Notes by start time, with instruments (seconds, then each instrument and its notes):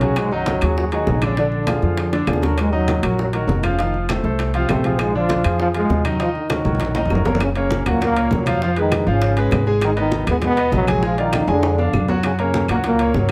Already playing: upright bass B1, trombone section C#3 C#4
0.01 grand piano F#3 F#4 G#4, high bongo, high conga, high timbale
0.16 trombone section G#2 G#3, high bongo, high conga, high timbale, claves
0.32 trombone section F#2 F#3, grand piano D#3 D#4 D#5, high conga
0.46 high bongo, high conga, high timbale, low timbale
0.61 upright bass D#2, grand piano F#3 F#4 G#4, high bongo, high conga, high timbale, claves
0.77 trombone section F#2 F#3, high bongo, high conga
0.91 trombone section D#3 D#4, grand piano F#3 F#4 G#4, high bongo, high conga, high timbale
1.07 upright bass A#1, high bongo, low bongo, high conga, low timbale
1.22 trombone section C#3 C#4, grand piano D3 D4 D5, high bongo, high conga, high timbale, claves
1.37 grand piano D3 D4 D5, trombone section D3 D4, high bongo, high conga, high timbale
1.52 trombone section D3 D4, high conga
1.67 grand piano F3 F4 G#4, high bongo, high conga, high timbale, low timbale, claves
1.82 upright bass F2, grand piano F3 F4 G#4, high bongo, high conga
1.97 high bongo, high conga, high timbale
2.13 grand piano D3 D4 D5, trombone section D3 D4, high bongo, high conga, high timbale
2.27 upright bass D#2, trombone section D3 D4, grand piano F3 F4 G#4, high conga, high timbale, low timbale, claves
2.33 low bongo
2.42 grand piano F#3 F#4 A#4, low bongo, high conga, high timbale
2.57 trombone section G#2 G#3, high bongo, high conga, high timbale, claves
2.72 trombone section F#2 F#3, grand piano D#3 D#4 D#5, high conga
2.88 high bongo, high conga, high timbale, low timbale
3.03 upright bass A#1, grand piano F#3 F#4 A#4, high bongo, high conga, high timbale, claves
3.18 trombone section F#2 F#3, high bongo, high conga
3.33 trombone section D#3 D#4, grand piano F#3 F#4 A#4, high bongo, high conga, high timbale
3.47 upright bass F1, high bongo, low bongo, high conga, low timbale
3.63 trombone section C#3 C#4, grand piano F3 F4 F5, high bongo, high conga, high timbale, claves
3.79 trombone section D#3 D#4, grand piano F3 F4 F5, high bongo, high conga, high timbale
3.94 high conga
4.09 grand piano A3 A4 C5, high bongo, high conga, high timbale, low timbale, claves
4.24 upright bass C2, grand piano A3 A4 C5, high bongo, high conga
4.39 high bongo, high conga, high timbale
4.54 trombone section C3 C4, grand piano F3 F4 F5, high bongo, high conga, high timbale
4.69 upright bass A#1, trombone section C3 C4, grand piano A3 A4 C5, high bongo, low bongo, high conga, high timbale, low timbale, claves
4.84 grand piano F3 F4 G#4, high bongo, high conga, high timbale
4.99 trombone section G#2 G#3, high bongo, high conga, high timbale, claves
5.15 grand piano D3 D4 D5, trombone section F3 F4, high conga
5.29 high bongo, high conga, high timbale, low timbale
5.44 upright bass F2, grand piano F3 F4 G#4, high bongo, high conga, high timbale, claves
5.60 trombone section F3 F4, high bongo, high conga
5.74 trombone section G#2 G#3, grand piano F3 F4 G#4, high bongo, high conga, high timbale
5.89 upright bass D#2, high bongo, low bongo, high conga, low timbale
6.05 trombone section F#2 F#3, grand piano D#3 D#4 D#5, high bongo, high conga, high timbale, claves
6.20 grand piano D#3 D#4 D#5, trombone section F3 F4, high bongo, high conga, high timbale
6.35 trombone section D#3 D#4, high conga
6.50 grand piano F#3 F#4 A#4, high bongo, high conga, high timbale, low timbale, claves
6.65 upright bass A#1, grand piano F#3 F#4 A#4, high bongo, high conga
6.75 high conga
6.80 high bongo, high timbale
6.85 low conga
6.95 grand piano D#3 D#4 D#5, high bongo, high conga, high timbale
7.05 low conga
7.10 upright bass F#1, grand piano F#3 F#4 A#4, low bongo, claves
7.15 low conga
7.25 grand piano A#3 A#4 C#5, low bongo, low conga, low timbale
7.35 low conga
7.40 trombone section C#3 C#4, high bongo, high conga, high timbale, claves
7.55 trombone section C#3 C#4, grand piano A#3 A#4 C#5, high conga, high timbale
7.71 high bongo, high conga
7.86 upright bass C#2, trombone section A#2 A#3, grand piano F#3 F#4 F#5, high bongo, high conga, low conga, high timbale, claves
8.01 trombone section A#2 A#3, high bongo, high conga, low conga, high timbale
8.16 grand piano A#3 A#4 C#5, high bongo, high conga, high timbale
8.31 upright bass F2, trombone section A#2 F#3, high bongo, low bongo, high conga
8.46 grand piano F3 F4 F5, high bongo, high conga, high timbale, claves
8.62 grand piano F3 F4 F5, trombone section F3 F4, high bongo, high conga
8.76 trombone section D#3 D#4, grand piano G#3 G#4 B4, high conga, high timbale
8.92 high bongo, high conga, high timbale, claves
9.07 upright bass G#1, trombone section C#3 C#4, grand piano F3 F4 F5, high bongo, high conga
9.22 high bongo, high conga, high timbale
9.37 grand piano G#3 G#4 B4, high bongo, high conga, high timbale
9.51 upright bass G#1, high bongo, low bongo, high conga, high timbale, low timbale, claves
9.67 grand piano G#3 G#4 G#5, high bongo
9.81 trombone section D#3 D#4, high bongo, high conga, high timbale, claves
9.96 trombone section D#3 D#4, grand piano B3 B4 D#5, high conga, high timbale
10.11 high bongo, high conga
10.27 upright bass D#2, trombone section B2 B3, grand piano G#3 G#4 G#5, high bongo, high conga, low conga, high timbale, claves
10.42 trombone section B2 B3, high bongo, high conga, low conga, high timbale
10.56 grand piano B3 B4 D#5, high bongo, high conga, high timbale
10.72 upright bass A#1, trombone section F#2 F#3, high bongo, low bongo, high conga, low timbale
10.87 grand piano G#3 G#4 G#5, high bongo, high conga, high timbale, claves
11.03 trombone section F3 F4, grand piano G#3 G#4 G#5, high bongo, high conga
11.18 trombone section D#3 D#4, grand piano F4 D5 F5, high conga, high timbale
11.33 high bongo, high conga, high timbale, claves
11.47 upright bass F2, trombone section D3 D4, grand piano G#3 G#4 G#5, high bongo, high conga, high timbale
11.63 high bongo, high conga, high timbale
11.78 grand piano D4 D5 F5, high bongo, high conga, low timbale
11.93 upright bass F#2, high bongo, low bongo, high conga, claves
12.08 grand piano F#3 F#4 F#5, high bongo, high conga, low timbale
12.23 trombone section C#3 C#4, high bongo, high conga, high timbale, claves
12.39 trombone section C#3 C#4, grand piano A#3 A#4 C#5, high conga, high timbale
12.54 high bongo, high conga
12.68 upright bass C#2, trombone section A#2 A#3, grand piano F#3 F#4 F#5, high bongo, high conga, low conga, high timbale, claves
12.84 trombone section A#2 A#3, high bongo, high conga, high timbale
12.99 grand piano A#3 A#4 C#5, high bongo, high conga, high timbale
13.14 upright bass G1, trombone section F#2 F#3, high bongo, low bongo, high conga